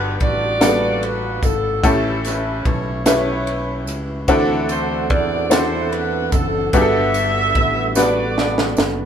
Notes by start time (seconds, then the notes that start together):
Already playing: G1 G2 B3 D4 F#4 G4 A4 B4
0.20 A1 F#4 B4 D5, kick, ride
0.60 G3 A#3 D4 F#4 A4, snare, ride, tambourine
0.67 B3
1.03 B4, ride
1.43 G#1 A4, kick, ride, tambourine
1.83 A1 A2 A3 C#4 E4 G4 A4, kick, ride, tambourine
2.25 B4, snare, ride, tambourine
2.65 B1 C#5, kick, ride
3.06 A3 C#4 E4 G4 B4 C#5, snare, ride, tambourine
3.47 ride
3.87 C#2, ride, tambourine
4.28 D2 D3 E3 C4 D4 E4 F#4 A4 F#5, kick, ride, tambourine
4.69 C5, ride, tambourine
5.10 E2 D5, kick, ride
5.50 C4 D4 E4 F#4 A4 C5, snare, ride, tambourine
5.91 B4, ride
6.32 F#1 A4, kick, ride, tambourine
6.72 G1 G2 G3 B3 D4 F#4 G4 G#4 A4 B4 E5, kick, ride, tambourine
6.81 A4
7.14 ride, tambourine
7.55 A1, kick, ride
7.95 G3 B3 D4 F#4 B4 D5, snare, tambourine
8.38 snare
8.58 snare
8.77 F#1, snare, tambourine